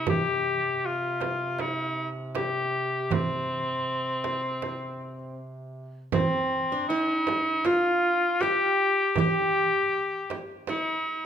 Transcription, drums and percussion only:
0.07 frame drum, darbuka dum
1.21 darbuka tek, frame drum
1.40 darbuka ka
1.59 darbuka tek, frame drum
2.16 darbuka ka
2.35 darbuka tek, frame drum
3.11 darbuka dum, frame drum
3.88 darbuka ka
4.24 darbuka tek, frame drum
4.44 darbuka ka
4.62 darbuka tek, frame drum
4.82 darbuka ka
5.01 darbuka ka
5.19 darbuka ka
6.12 frame drum, darbuka dum
6.52 darbuka ka
6.90 darbuka ka
7.27 darbuka tek, frame drum
7.48 darbuka ka
7.65 darbuka tek, frame drum
8.03 darbuka ka
8.41 darbuka tek, frame drum
9.16 frame drum, darbuka dum
9.55 darbuka ka
9.93 darbuka ka
10.30 darbuka tek, frame drum
10.67 darbuka tek, frame drum
11.06 darbuka ka

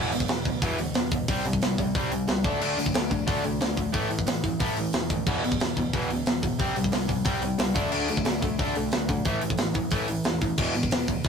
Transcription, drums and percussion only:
0.12 open hi-hat
0.20 kick
0.28 snare, open hi-hat
0.45 kick, open hi-hat
0.62 kick, open hi-hat
0.78 open hi-hat
0.94 snare, open hi-hat
1.11 kick, open hi-hat
1.28 kick, open hi-hat
1.45 open hi-hat
1.53 kick
1.62 snare, open hi-hat
1.78 kick, open hi-hat
1.95 kick, open hi-hat
2.12 open hi-hat
2.28 snare, open hi-hat
2.44 kick, open hi-hat
2.61 crash
2.79 open hi-hat
2.86 kick
2.94 snare, open hi-hat
3.11 kick, open hi-hat
3.28 kick, open hi-hat
3.44 open hi-hat
3.61 snare, open hi-hat
3.77 kick, open hi-hat
3.94 kick, open hi-hat
4.11 open hi-hat
4.19 kick
4.27 snare, open hi-hat
4.44 kick, open hi-hat
4.60 kick, open hi-hat
4.77 open hi-hat
4.93 snare, open hi-hat
5.10 kick, open hi-hat
5.26 kick, crash
5.44 open hi-hat
5.52 kick
5.60 snare, open hi-hat
5.77 kick, open hi-hat
5.93 kick, open hi-hat
6.10 open hi-hat
6.26 snare, open hi-hat
6.43 kick, open hi-hat
6.59 kick, open hi-hat
6.76 open hi-hat
6.84 kick
6.92 snare, open hi-hat
7.09 kick, open hi-hat
7.25 kick, open hi-hat
7.42 open hi-hat
7.59 snare, open hi-hat
7.75 kick, open hi-hat
7.92 crash
8.08 open hi-hat
8.17 kick
8.25 snare, open hi-hat
8.42 kick, open hi-hat
8.59 kick, open hi-hat
8.75 open hi-hat
8.92 snare, open hi-hat
9.09 kick, open hi-hat
9.25 kick, open hi-hat
9.41 open hi-hat
9.50 kick
9.58 snare, open hi-hat
9.74 kick, open hi-hat
9.91 kick, open hi-hat
10.08 open hi-hat
10.24 snare, open hi-hat
10.41 kick, open hi-hat
10.58 kick, crash
10.75 open hi-hat
10.83 kick
10.91 snare, open hi-hat
11.08 kick, open hi-hat
11.24 kick, open hi-hat

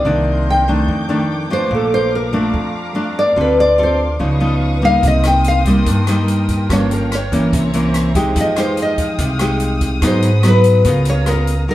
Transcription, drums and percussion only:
5.03 kick, closed hi-hat
5.23 cross-stick, closed hi-hat
5.44 closed hi-hat
5.65 kick, closed hi-hat
5.86 kick, closed hi-hat
6.07 cross-stick, closed hi-hat
6.28 closed hi-hat
6.49 kick, closed hi-hat
6.70 kick, cross-stick, closed hi-hat
6.91 closed hi-hat
7.12 cross-stick, closed hi-hat
7.32 kick, closed hi-hat
7.53 kick, closed hi-hat
7.73 closed hi-hat
7.94 cross-stick, closed hi-hat
8.15 kick, closed hi-hat
8.36 kick, closed hi-hat
8.56 cross-stick, closed hi-hat
8.77 closed hi-hat
8.98 kick, closed hi-hat
9.18 kick, closed hi-hat
9.39 cross-stick, closed hi-hat
9.60 closed hi-hat
9.81 kick, closed hi-hat
10.02 kick, cross-stick, closed hi-hat
10.22 closed hi-hat
10.43 cross-stick, closed hi-hat
10.64 closed hi-hat
10.85 kick, closed hi-hat
11.05 closed hi-hat
11.26 cross-stick, closed hi-hat
11.47 closed hi-hat

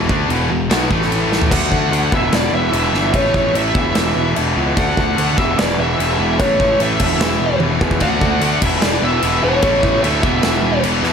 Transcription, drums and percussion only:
0.09 kick
0.30 crash
0.71 snare, crash
0.91 kick
1.02 snare
1.12 crash
1.32 snare
1.41 floor tom
1.51 kick, crash
1.72 kick
1.93 crash
2.12 kick
2.32 snare, crash
2.73 crash
2.94 snare
3.14 kick, crash
3.34 kick
3.55 crash
3.75 kick
3.95 snare, crash
4.36 crash
4.77 kick, crash
4.97 kick
5.18 crash
5.38 kick
5.59 snare, crash
6.00 crash
6.40 kick, crash
6.60 kick
6.80 crash
7.00 kick, crash
7.20 snare, crash
7.60 high tom
7.81 kick
7.91 kick
8.00 kick, crash
8.21 kick
8.41 crash
8.62 kick, crash
8.82 snare, crash
9.23 crash
9.62 kick, crash
9.83 kick
10.04 crash
10.23 kick
10.43 snare, crash
10.83 crash
11.03 snare

